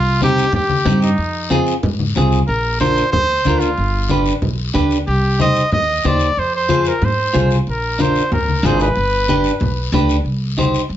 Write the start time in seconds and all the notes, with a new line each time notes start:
Already playing: C2 F4
0.21 C4 D#4 G4, high conga, short guiro
0.38 short guiro
0.53 D#2 G4, low conga, long guiro
0.69 high conga
0.85 G2 C4 D#4 G4, high conga, short guiro
1.02 D#4, short guiro
1.18 F2, long guiro
1.50 C4 F4 G#4, high conga, short guiro
1.67 short guiro
1.83 G#2, low conga, long guiro
1.99 high conga
2.15 C2 C4 F4 G#4, high conga, short guiro
2.32 short guiro
2.48 A#1 A#4, long guiro
2.80 D4 F4 A#4 C5, high conga, short guiro
2.96 short guiro
3.12 D2 C5, low conga, long guiro
3.45 D2 D4 F4 A#4, high conga, short guiro
3.60 F4, short guiro
3.77 G1, long guiro
4.09 D4 G4 B4, high conga, short guiro
4.26 short guiro
4.42 B1, low conga, long guiro
4.74 D2 D4 G4 B4, high conga, low conga, short guiro
4.91 short guiro
5.07 C2 G4, long guiro
5.39 D#4 G4 C5 D#5, high conga, short guiro
5.55 short guiro
5.71 D#2 D#5, low conga, long guiro
6.04 D#2 D#4 G4 C5 D5, high conga, short guiro
6.19 short guiro
6.36 F2 C5, long guiro
6.55 C5
6.69 F4 G#4 C5, high conga, short guiro
6.85 A#4, short guiro
7.02 G#2 C5, low conga, long guiro
7.33 C2 F4 G#4 C5, high conga, short guiro
7.51 short guiro
7.67 A#1 A#4, long guiro
7.99 D4 F4 A#4 C5, high conga, short guiro
8.16 short guiro
8.31 D2 A#4, low conga, long guiro
8.48 high conga
8.63 G#1 D4 F4 G#4 C5, high conga, short guiro
8.80 B4, short guiro
8.96 G1, long guiro
9.28 D4 G4 B4, high conga, short guiro
9.44 short guiro
9.60 B1, low conga, long guiro
9.92 D2 D4 G4 B4, high conga, short guiro
10.09 short guiro
10.24 C2, long guiro
10.57 D#4 G4 C5, high conga, short guiro
10.74 short guiro
10.89 G2, long guiro